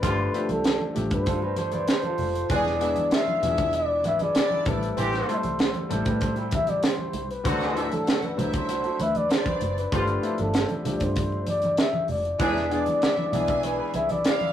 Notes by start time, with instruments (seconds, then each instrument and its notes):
Already playing: flugelhorn B4
0.02 fingered electric bass G1, horn section D3 C4 F4, grand piano F3 A3 C4 D4 G4, kick, closed hi-hat, muted conga, low conga
0.18 muted conga
0.33 grand piano F3 A3 C4 D4 G4, closed hi-hat
0.49 fingered electric bass C2, flugelhorn A4, closed hi-hat, high conga
0.64 snare, closed hi-hat, muted conga
0.80 high conga
0.94 fingered electric bass A1, grand piano F3 A3 C4 D4 G4, closed hi-hat, high conga, low conga
1.11 fingered electric bass G2, flugelhorn C5, kick, closed hi-hat
1.26 clean electric guitar F4 A4, kick, closed hi-hat
1.42 clean electric guitar G4 B4, muted conga
1.56 clean electric guitar A4 C5, flugelhorn C5, closed hi-hat, high conga
1.72 clean electric guitar B4 D5, closed hi-hat, high conga
1.88 clean electric guitar G4 B4, snare, closed hi-hat
2.03 clean electric guitar F4 A4, closed hi-hat, high conga
2.18 fingered electric bass F1, open hi-hat, low conga
2.35 closed hi-hat
2.49 fingered electric bass E1, grand piano E3 G#3 B3 D4 G#4, horn section E3 D4 G#4, violin section G#4 G#5, flugelhorn D5, kick, closed hi-hat, muted conga, low conga
2.65 snare, muted conga
2.80 grand piano E3 G#3 B3 D4 G#4, violin section E4 E5, closed hi-hat
2.96 closed hi-hat, high conga
3.11 violin section F4 F5, flugelhorn E5, snare, closed hi-hat, muted conga
3.28 muted conga, high conga
3.42 fingered electric bass E1, grand piano E3 G#3 B3 D4 F4, violin section E4 E5, closed hi-hat, high conga, low conga
3.50 grand piano G#4
3.58 kick, closed hi-hat
3.73 flugelhorn D5, closed hi-hat, muted conga
4.04 fingered electric bass G#1, clean electric guitar B4 D5, flugelhorn E5, closed hi-hat, high conga
4.19 clean electric guitar G#4 B4, flugelhorn D5, closed hi-hat, high conga
4.35 violin section D4 D5, clean electric guitar E4 G#4, snare, closed hi-hat
4.51 clean electric guitar E4, muted conga, high conga
4.65 fingered electric bass A1, grand piano G3 A3 C4 E4 A4, flugelhorn B4, kick, closed hi-hat, low conga
4.83 closed hi-hat
4.97 fingered electric bass A1, horn section E3 C4 G4, flugelhorn C5, closed hi-hat, muted conga, low conga
5.13 snare, closed hi-hat
5.27 grand piano G3 A3 C4 E4 A4, closed hi-hat
5.43 fingered electric bass C2, closed hi-hat, high conga
5.59 snare, closed hi-hat, muted conga
5.74 closed hi-hat, muted conga, high conga
5.89 fingered electric bass A1, grand piano G3 A3 C4 E4 C5, clean electric guitar A4, closed hi-hat, high conga, low conga
6.05 fingered electric bass A2, clean electric guitar G4 B4, kick, closed hi-hat
6.20 clean electric guitar A4 C5, kick, closed hi-hat, muted conga
6.36 clean electric guitar E4 G4, closed hi-hat
6.51 flugelhorn E5, kick, closed hi-hat, high conga
6.67 flugelhorn D5, closed hi-hat, high conga
6.83 flugelhorn C5, snare, closed hi-hat, muted conga
6.98 high conga
7.13 fingered electric bass C2, closed hi-hat, low conga
7.31 flugelhorn B4, closed hi-hat
7.43 fingered electric bass D2, horn section D3 C4 F#4, grand piano F#3 A3 C4 D4 A4, violin section F#4 F#5, kick, closed hi-hat, low conga
7.61 snare, closed hi-hat
7.75 grand piano F#3 A3 C4 D4 A4, violin section E4 E5, closed hi-hat
7.92 flugelhorn A4, closed hi-hat, high conga
8.06 violin section F#4 F#5, snare, closed hi-hat, muted conga
8.22 flugelhorn B4, closed hi-hat, high conga
8.36 fingered electric bass C2, grand piano F#3 A3 C4 D4 C5, violin section E4 E5, closed hi-hat, high conga, low conga
8.53 flugelhorn C5, kick, closed hi-hat
8.69 clean electric guitar D4 F#4, closed hi-hat
8.84 clean electric guitar F#4 A4, closed hi-hat
8.99 fingered electric bass D2, clean electric guitar B4, flugelhorn E5, closed hi-hat, high conga
9.15 flugelhorn D5, closed hi-hat, high conga
9.30 violin section D4 D5, clean electric guitar A4 C5, flugelhorn C5, snare, closed hi-hat
9.46 clean electric guitar B4 D5, kick, closed hi-hat, muted conga, high conga
9.61 fingered electric bass F#1, closed hi-hat, low conga
9.78 flugelhorn B4, closed hi-hat
9.91 fingered electric bass G1, horn section D3 C4 F4, grand piano F3 A3 C4 D4 G4, kick, closed hi-hat, low conga
10.07 closed hi-hat
10.22 grand piano F3 A3 C4 D4 E4, closed hi-hat
10.38 fingered electric bass G1, flugelhorn A4, closed hi-hat, high conga
10.54 snare, closed hi-hat, muted conga
10.69 closed hi-hat, muted conga, high conga
10.84 fingered electric bass C2, grand piano F3 A3 C4 D4 G4, closed hi-hat, high conga, low conga
10.96 flugelhorn D5
11.00 fingered electric bass G2, flugelhorn C5, kick, closed hi-hat
11.15 kick, closed hi-hat, muted conga
11.32 muted conga
11.46 flugelhorn D5, closed hi-hat, high conga
11.62 closed hi-hat, high conga
11.77 flugelhorn E5, snare, closed hi-hat, muted conga
11.94 muted conga, high conga
12.08 fingered electric bass F1, flugelhorn D5, open hi-hat, low conga
12.25 closed hi-hat
12.39 fingered electric bass E1, grand piano E3 G#3 B3 D4 G#4, horn section E3 D4 G#4, violin section E4 E5, flugelhorn D5, kick, closed hi-hat, low conga
12.56 snare, muted conga
12.70 grand piano E3 G#3 B3 D4 G#4, violin section D4 D5, closed hi-hat
12.86 closed hi-hat, high conga
13.02 violin section E4 E5, snare, closed hi-hat, muted conga
13.18 muted conga, high conga
13.32 fingered electric bass B1, grand piano E3 G#3 B3 D4 E4, violin section G#4 G#5, closed hi-hat, high conga, low conga
13.48 clean electric guitar E5, kick, closed hi-hat
13.63 clean electric guitar B4 D5, flugelhorn B4, closed hi-hat, muted conga
13.79 clean electric guitar G#4 B4
13.94 fingered electric bass C2, clean electric guitar E4 G#4, flugelhorn E5, closed hi-hat, high conga
14.09 clean electric guitar E4, flugelhorn D5, closed hi-hat, high conga
14.25 violin section E4 F5, snare, closed hi-hat, muted conga
14.40 closed hi-hat, muted conga, high conga